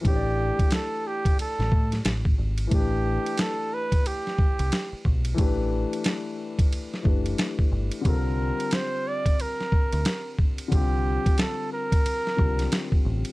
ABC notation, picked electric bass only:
X:1
M:4/4
L:1/16
Q:"Swing 16ths" 1/4=90
K:Clyd
V:1 name="Picked electric bass" clef=bass
A,,,3 z6 A,,, A,,2 A,,,2 ^G,,,2 | A,,,3 z8 C,, z2 B,,,2 | A,,,3 z6 z F,,,2 z2 G,,, z | C,,3 z8 D,, z4 |
C,,3 z6 z C,,2 z2 A,,, z |]